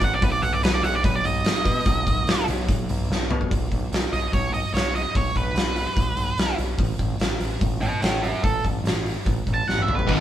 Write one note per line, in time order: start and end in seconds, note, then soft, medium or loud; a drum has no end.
0.01 0.20 A1 medium
0.01 0.13 F#5 loud
0.01 kick medium
0.01 open hi-hat medium
0.14 0.24 D5 medium
0.22 0.40 B1 medium
0.22 0.31 B4 loud
0.22 kick loud
0.22 open hi-hat medium
0.32 0.42 D5 medium
0.42 0.61 B1 medium
0.42 0.53 F#5 loud
0.42 open hi-hat medium
0.53 0.63 D5 medium
0.63 0.81 B1 medium
0.63 0.74 B4 loud
0.63 snare loud
0.63 open hi-hat medium
0.74 0.84 D5 loud
0.83 1.01 B1 medium
0.83 0.94 F#5 loud
0.83 open hi-hat medium
0.95 1.04 D5 medium
1.04 1.22 B1 medium
1.04 1.16 B4 medium
1.04 kick loud
1.04 open hi-hat medium
1.16 1.25 D5 medium
1.24 1.42 B1 medium
1.24 2.44 D#5 loud
1.24 open hi-hat medium
1.44 1.63 B1 medium
1.44 snare loud
1.44 open hi-hat medium
1.65 1.83 B2 medium
1.65 kick medium
1.65 open hi-hat medium
1.86 2.04 B1 loud
1.86 kick loud
1.86 open hi-hat medium
2.07 2.25 B1 medium
2.07 kick medium
2.07 open hi-hat medium
2.27 2.45 B1 medium
2.27 snare loud
2.27 open hi-hat medium
2.48 2.66 B1 loud
2.48 open hi-hat medium
2.69 2.86 B1 medium
2.69 kick loud
2.69 open hi-hat medium
2.89 3.07 B1 medium
2.89 open hi-hat medium
3.10 3.28 B1 medium
3.10 snare medium
3.30 3.48 B2 medium
3.30 mid tom loud
3.41 floor tom medium
3.51 3.66 B1 medium
3.51 kick loud
3.51 open hi-hat medium
3.72 3.86 B1 medium
3.72 kick medium
3.72 open hi-hat soft
3.92 4.07 B1 medium
3.92 snare medium
3.92 open hi-hat medium
4.13 4.27 B1 medium
4.13 4.32 D#5 medium
4.13 open hi-hat medium
4.33 4.63 B1 medium
4.33 4.53 C#5 medium
4.33 kick loud
4.33 open hi-hat medium
4.54 4.73 D#5 medium
4.54 open hi-hat medium
4.74 5.04 B1 medium
4.74 4.94 C#5 medium
4.74 snare loud
4.74 open hi-hat medium
4.95 5.15 D#5 medium
4.95 open hi-hat medium
5.15 5.30 B1 medium
5.15 5.36 C#5 medium
5.15 kick loud
5.15 open hi-hat medium
5.36 5.51 B1 medium
5.36 6.56 B4 medium
5.36 kick medium
5.36 open hi-hat medium
5.55 5.85 B1 medium
5.55 snare loud
5.55 open hi-hat medium
5.76 open hi-hat medium
5.96 6.12 B1 medium
5.96 kick loud
5.96 open hi-hat medium
6.16 6.32 B1 medium
6.16 open hi-hat medium
6.38 6.53 B1 medium
6.38 snare loud
6.38 open hi-hat medium
6.58 6.74 B1 medium
6.58 open hi-hat medium
6.78 6.94 A1 medium
6.78 kick loud
6.78 open hi-hat medium
6.99 7.15 A1 medium
6.99 kick medium
6.99 open hi-hat soft
7.20 7.35 A1 medium
7.20 snare loud
7.20 open hi-hat medium
7.40 7.55 A1 medium
7.40 open hi-hat medium
7.61 7.92 A1 medium
7.61 kick loud
7.61 open hi-hat medium
7.81 8.02 F#4 medium
7.81 8.02 B4 medium
7.81 open hi-hat soft
8.02 8.32 A1 medium
8.02 8.22 E4 medium
8.02 8.22 A4 medium
8.02 snare loud
8.02 open hi-hat medium
8.23 8.42 C#4 medium
8.23 8.43 F#4 medium
8.23 open hi-hat medium
8.43 8.59 A1 medium
8.43 8.64 A4 medium
8.43 kick loud
8.43 open hi-hat medium
8.65 8.80 A1 medium
8.65 kick medium
8.65 open hi-hat medium
8.84 9.14 A1 medium
8.84 snare loud
8.84 open hi-hat medium
9.06 open hi-hat medium
9.26 9.41 A1 medium
9.26 kick loud
9.26 open hi-hat medium
9.47 9.62 A1 medium
9.47 kick medium
9.47 open hi-hat medium
9.54 9.68 A5 medium
9.68 9.83 A1 medium
9.68 9.82 F#5 medium
9.68 snare medium
9.78 high tom medium
9.82 9.95 E5 medium
9.88 10.04 A1 medium
9.88 mid tom medium
9.95 10.08 B4 medium
9.95 floor tom medium
10.07 10.20 B1 medium
10.07 10.20 B2 medium
10.07 10.20 D#3 medium
10.07 10.20 F#3 loud
10.07 10.20 B3 loud
10.07 10.20 D#4 loud
10.07 10.20 B4 loud
10.07 kick loud
10.07 open hi-hat medium